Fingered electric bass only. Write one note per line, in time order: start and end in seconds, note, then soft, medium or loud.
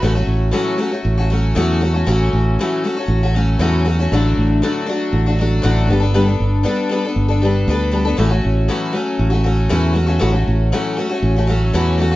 0.03 0.26 A1 medium
0.27 0.51 A1 medium
1.05 1.52 A1 medium
1.56 2.03 E2 medium
2.07 2.30 A1 medium
2.33 2.56 A1 medium
3.08 3.56 A1 medium
3.59 4.07 E2 medium
4.12 4.35 A1 medium
4.37 4.61 A1 medium
5.13 5.60 A1 medium
5.64 5.88 A1 medium
5.89 6.36 G1 medium
6.40 6.64 G1 medium
7.16 7.63 G1 medium
7.68 8.15 D2 medium
8.18 8.42 A1 medium
8.45 8.68 A1 medium
9.19 9.67 A1 medium
9.71 10.18 E2 medium
10.22 10.45 A1 medium
10.47 10.71 A1 medium
11.22 11.70 A1 medium
11.74 12.16 E2 medium